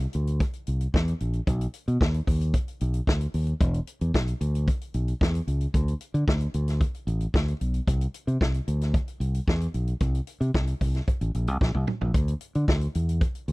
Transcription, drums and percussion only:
0.13 closed hi-hat medium
0.27 closed hi-hat medium
0.40 kick loud
0.40 closed hi-hat medium
0.53 closed hi-hat soft
0.67 closed hi-hat medium
0.81 closed hi-hat soft
0.94 kick loud
0.94 snare loud
1.08 closed hi-hat soft
1.20 closed hi-hat medium
1.33 closed hi-hat soft
1.47 kick loud
1.47 closed hi-hat medium
1.61 closed hi-hat medium
1.74 closed hi-hat medium
1.88 closed hi-hat soft
2.01 kick loud
2.01 snare loud
2.14 closed hi-hat soft
2.27 kick medium
2.27 open hi-hat medium
2.41 closed hi-hat medium
2.54 kick loud
2.54 closed hi-hat medium
2.68 closed hi-hat soft
2.81 closed hi-hat medium
2.94 closed hi-hat soft
3.07 kick loud
3.07 snare medium
3.21 closed hi-hat soft
3.34 open hi-hat medium
3.47 closed hi-hat soft
3.60 kick loud
3.60 closed hi-hat medium
3.74 closed hi-hat soft
3.87 closed hi-hat medium
4.01 closed hi-hat soft
4.14 kick medium
4.14 snare loud
4.28 closed hi-hat soft
4.41 closed hi-hat medium
4.55 closed hi-hat medium
4.68 kick loud
4.68 closed hi-hat medium
4.81 closed hi-hat soft
4.94 closed hi-hat medium
5.08 closed hi-hat soft
5.21 kick loud
5.21 snare loud
5.35 closed hi-hat soft
5.48 closed hi-hat medium
5.61 closed hi-hat soft
5.74 kick loud
5.74 closed hi-hat medium
5.88 closed hi-hat medium
6.01 closed hi-hat medium
6.14 closed hi-hat soft
6.28 kick loud
6.28 snare loud
6.40 closed hi-hat soft
6.54 closed hi-hat medium
6.68 snare soft
6.68 closed hi-hat medium
6.81 kick loud
6.81 closed hi-hat medium
6.94 closed hi-hat soft
7.07 closed hi-hat medium
7.20 closed hi-hat soft
7.34 kick loud
7.34 snare loud
7.48 closed hi-hat soft
7.61 closed hi-hat medium
7.74 closed hi-hat soft
7.87 kick loud
7.87 closed hi-hat medium
8.01 closed hi-hat medium
8.14 closed hi-hat medium
8.28 closed hi-hat soft
8.41 kick loud
8.41 snare loud
8.54 closed hi-hat soft
8.68 closed hi-hat medium
8.81 snare soft
8.81 closed hi-hat soft
8.94 kick loud
8.94 closed hi-hat medium
9.08 closed hi-hat soft
9.21 closed hi-hat medium
9.34 closed hi-hat soft
9.48 kick medium
9.48 snare loud
9.61 closed hi-hat soft
9.74 closed hi-hat medium
9.87 closed hi-hat soft
10.00 kick loud
10.00 closed hi-hat medium
10.15 closed hi-hat soft
10.27 closed hi-hat medium
10.41 closed hi-hat soft
10.54 kick loud
10.54 snare loud
10.67 closed hi-hat medium
10.81 kick medium
10.81 open hi-hat medium
10.95 snare soft
10.95 closed hi-hat medium
11.07 kick loud
11.07 closed hi-hat medium
11.21 closed hi-hat soft
11.34 closed hi-hat medium
11.47 closed hi-hat soft
11.61 kick loud
11.61 snare soft
11.74 high tom medium
11.87 mid tom medium
12.01 floor tom medium
12.14 kick loud
12.14 closed hi-hat medium
12.28 closed hi-hat medium
12.41 closed hi-hat medium
12.55 closed hi-hat soft
12.68 kick loud
12.68 snare medium
12.81 closed hi-hat soft
12.95 closed hi-hat medium
13.09 closed hi-hat soft
13.21 kick loud
13.21 closed hi-hat medium
13.35 closed hi-hat soft
13.48 closed hi-hat soft

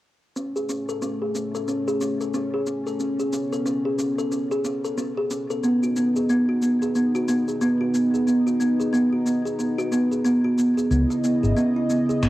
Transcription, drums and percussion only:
0.36 shaker soft
0.56 shaker soft
0.69 shaker medium
0.89 shaker soft
1.02 shaker soft
1.35 shaker medium
1.55 shaker soft
1.68 shaker soft
1.88 shaker soft
2.01 shaker medium
2.21 shaker soft
2.34 shaker soft
2.67 shaker medium
2.87 shaker soft
3.00 shaker soft
3.20 shaker soft
3.33 shaker medium
3.53 shaker soft
3.66 shaker soft
3.99 shaker medium
4.19 shaker soft
4.32 shaker soft
4.52 shaker soft
4.65 shaker medium
4.85 shaker soft
4.98 shaker soft
5.31 shaker medium
5.50 shaker soft
5.64 shaker soft
5.83 shaker soft
5.97 shaker medium
6.16 shaker soft
6.30 shaker soft
6.62 shaker medium
6.82 shaker soft
6.95 shaker soft
7.15 shaker soft
7.29 shaker medium
7.48 shaker soft
7.61 shaker soft
7.94 shaker medium
8.14 shaker soft
8.28 shaker soft
8.47 shaker soft
8.61 shaker medium
8.80 shaker soft
8.94 shaker soft
9.27 shaker medium
9.46 shaker soft
9.60 shaker soft
9.79 shaker soft
9.93 shaker medium
10.12 shaker soft
10.26 shaker soft
10.59 shaker medium
10.78 shaker soft
10.91 shaker soft
11.11 shaker soft
11.24 shaker medium
11.44 shaker soft
11.57 shaker soft
11.90 shaker medium
12.10 shaker soft
12.23 finger snap medium
12.23 shaker soft

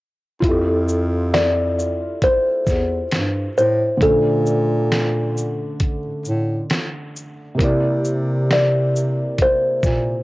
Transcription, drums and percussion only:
0.42 kick loud
0.42 closed hi-hat medium
0.88 shaker soft
1.34 snare loud
1.34 closed hi-hat medium
1.79 shaker soft
2.22 kick medium
2.22 closed hi-hat medium
2.67 kick medium
2.67 snare soft
2.67 shaker soft
3.11 snare medium
3.11 closed hi-hat medium
3.58 shaker soft
4.01 kick loud
4.01 closed hi-hat medium
4.46 shaker soft
4.92 snare loud
4.92 closed hi-hat medium
5.37 shaker soft
5.80 kick medium
5.80 closed hi-hat medium
6.25 shaker soft
6.70 snare loud
6.70 closed hi-hat medium
7.16 shaker soft
7.59 kick loud
7.59 closed hi-hat medium
8.05 shaker soft
8.51 snare loud
8.51 closed hi-hat medium
8.96 shaker soft
9.38 kick medium
9.38 closed hi-hat medium
9.83 kick medium
9.83 snare soft
9.83 shaker soft

